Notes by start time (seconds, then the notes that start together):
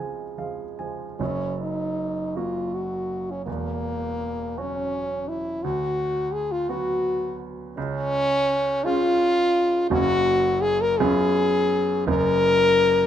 Already playing: C#2 F3 G#3 G#4 F5 G#5
0.38 F3 G#3 F5
0.79 F3 G#3 G#5
1.19 F#1 F#2 C#4
1.61 D#4
2.36 F#3 A#3 F4 F#4
2.74 F#4
3.31 C#4
3.46 E1 E2 A#3
4.57 F#3 C#4 F#4
5.28 E4
5.63 D2 F#4
6.33 G#4
6.52 F4
6.69 F#3 B3 F#4
7.77 C#2 C#4
8.84 G#3 C#4 F4
9.90 F#1 F#2 A#3 C#4 F#4
10.62 G#4
10.81 A#4
10.98 F#2 B3 C#4 F4 G#4
12.07 F#1 F#2 A#4